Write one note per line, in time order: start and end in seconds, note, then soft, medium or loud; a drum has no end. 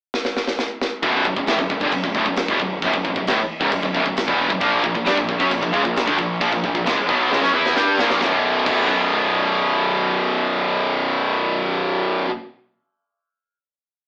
0.14 snare medium
0.25 snare medium
0.37 snare medium
0.47 snare medium
0.59 snare medium
0.82 snare loud
1.02 1.23 B0 medium
1.02 1.25 B1 medium
1.02 1.25 F#2 medium
1.02 1.25 B2 loud
1.02 kick loud
1.02 crash medium
1.25 1.36 B0 medium
1.25 1.36 B1 medium
1.25 1.37 F#2 medium
1.25 kick medium
1.36 1.47 B0 medium
1.36 1.48 B1 medium
1.36 1.48 F#2 medium
1.36 kick medium
1.47 1.58 A1 loud
1.47 1.59 A2 medium
1.47 1.59 E3 medium
1.47 snare loud
1.47 crash medium
1.59 1.69 B0 medium
1.59 1.69 B1 medium
1.59 1.70 F#2 medium
1.59 kick medium
1.70 1.80 B0 medium
1.70 1.81 B1 medium
1.70 1.82 F#2 medium
1.70 kick medium
1.81 1.92 G1 loud
1.81 1.92 G2 medium
1.81 1.92 D3 loud
1.81 kick medium
1.92 2.03 B0 medium
1.92 2.03 B1 medium
1.92 2.03 F#2 medium
1.92 kick medium
1.92 crash medium
2.04 2.14 B0 medium
2.04 2.15 B1 medium
2.04 2.15 F#2 medium
2.04 kick medium
2.14 2.25 D1 medium
2.14 2.26 D2 medium
2.14 2.26 A2 loud
2.14 kick medium
2.26 2.47 B0 medium
2.26 2.45 B1 medium
2.26 2.45 F#2 medium
2.26 kick medium
2.36 snare loud
2.36 crash medium
2.48 2.59 E1 loud
2.48 2.59 E2 medium
2.48 2.60 B2 loud
2.48 kick loud
2.60 2.81 B0 medium
2.60 2.78 B1 medium
2.60 2.79 F#2 medium
2.60 kick medium
2.82 2.93 B0 medium
2.82 2.93 B1 medium
2.82 2.93 F#2 medium
2.82 kick loud
2.82 crash medium
2.93 3.04 B0 medium
2.93 3.04 B1 medium
2.93 3.04 F#2 medium
2.93 kick medium
3.05 3.15 B0 medium
3.05 3.16 B1 medium
3.05 3.16 F#2 medium
3.05 kick medium
3.16 3.26 B0 medium
3.16 3.28 B1 medium
3.16 3.28 F#2 medium
3.16 kick medium
3.26 3.37 D1 loud
3.26 3.38 D2 medium
3.26 3.39 A2 medium
3.26 snare loud
3.26 crash medium
3.38 muted picked electric bass stroke soft
3.38 muted distorted electric guitar stroke medium
3.61 3.71 C#1 loud
3.61 3.72 C#2 medium
3.61 3.72 G#2 medium
3.61 kick loud
3.72 3.82 B0 medium
3.72 3.83 B1 medium
3.72 3.83 F#2 medium
3.72 kick medium
3.72 crash medium
3.83 3.94 B0 medium
3.83 3.94 B1 medium
3.83 3.95 F#2 medium
3.83 kick medium
3.95 4.05 B0 medium
3.95 4.05 B1 medium
3.95 4.06 F#2 loud
3.95 kick medium
4.06 4.27 B0 medium
4.06 4.24 B1 medium
4.06 4.25 F#2 medium
4.06 kick medium
4.17 snare loud
4.17 crash medium
4.28 4.49 E1 medium
4.28 4.50 E2 loud
4.28 4.50 B2 loud
4.28 4.51 E3 medium
4.28 kick loud
4.50 4.61 B0 medium
4.50 4.62 B1 medium
4.50 4.62 F#2 medium
4.50 kick loud
4.61 4.82 A#1 loud
4.61 4.84 A#2 medium
4.61 4.84 F3 loud
4.61 4.84 A#3 loud
4.61 kick loud
4.61 crash medium
4.83 4.94 A#1 medium
4.83 4.94 A#2 medium
4.83 4.94 F3 medium
4.83 kick medium
4.95 5.06 A#1 medium
4.95 5.07 A#2 medium
4.95 5.07 F3 medium
4.95 kick medium
5.06 5.17 G2 loud
5.06 5.18 G3 medium
5.06 5.18 D4 loud
5.06 snare loud
5.06 crash medium
5.17 5.28 A#1 medium
5.17 5.29 A#2 medium
5.17 5.29 F3 medium
5.17 kick loud
5.29 5.40 A#1 medium
5.29 5.41 A#2 medium
5.29 5.39 F3 medium
5.29 kick medium
5.40 5.51 F#2 loud
5.40 5.51 F#3 medium
5.40 5.51 C#4 loud
5.40 kick medium
5.51 5.62 A#1 medium
5.51 5.62 A#2 medium
5.51 5.62 F3 medium
5.51 kick loud
5.51 crash medium
5.63 5.74 A#1 medium
5.63 5.73 A#2 medium
5.63 5.73 F3 medium
5.63 kick medium
5.73 5.85 C#2 loud
5.73 5.84 C#3 medium
5.73 5.84 G#3 loud
5.73 kick medium
5.84 6.06 A#1 medium
5.84 6.03 A#2 medium
5.84 6.03 F3 medium
5.84 kick medium
5.96 snare loud
5.96 crash medium
6.07 6.17 D2 loud
6.07 6.18 D3 loud
6.07 6.18 A3 loud
6.07 kick loud
6.18 6.40 A#1 medium
6.18 6.37 A#2 medium
6.18 6.37 F3 medium
6.18 kick medium
6.41 6.51 A#1 loud
6.41 6.52 A#2 medium
6.41 6.52 F3 medium
6.41 kick loud
6.41 crash medium
6.52 6.63 A#1 medium
6.52 6.63 A#2 medium
6.52 6.64 F3 medium
6.52 kick medium
6.64 6.74 A#1 medium
6.64 6.75 A#2 medium
6.64 6.75 F3 medium
6.64 kick medium
6.75 6.85 A#1 medium
6.75 6.86 A#2 medium
6.75 6.87 F3 medium
6.75 kick medium
6.85 6.96 C#2 loud
6.85 6.97 C#3 medium
6.85 6.97 G#3 loud
6.85 snare loud
6.85 crash medium
6.98 muted picked electric bass stroke soft
6.98 muted distorted electric guitar stroke medium
7.08 7.30 B1 medium
7.08 7.31 B2 medium
7.08 7.31 F#3 medium
7.08 7.31 B3 loud
7.08 kick loud
7.31 7.41 C#2 loud
7.31 7.42 C#3 loud
7.31 7.42 G#3 loud
7.31 snare medium
7.42 7.52 F#2 loud
7.42 7.53 F#3 medium
7.42 7.54 C#4 loud
7.42 snare medium
7.53 7.74 E2 medium
7.53 7.76 E3 medium
7.53 7.76 B3 loud
7.53 7.76 E4 loud
7.66 snare medium
7.75 7.96 G2 loud
7.75 7.98 G3 medium
7.75 7.99 D4 medium
7.75 7.99 G4 loud
7.75 snare medium
7.97 8.19 A#1 loud
7.97 8.21 A#2 loud
7.97 8.21 F3 loud
7.97 8.22 A#3 loud
7.97 snare loud
8.10 snare medium
8.21 8.34 B0 loud
8.21 8.66 B1 medium
8.21 8.68 F#2 medium
8.21 8.69 B2 loud
8.21 kick medium
8.21 snare medium
8.66 12.22 B0 loud
8.66 12.26 B1 medium
8.66 12.28 F#2 medium
8.66 12.30 B2 loud
8.66 kick loud
8.66 crash medium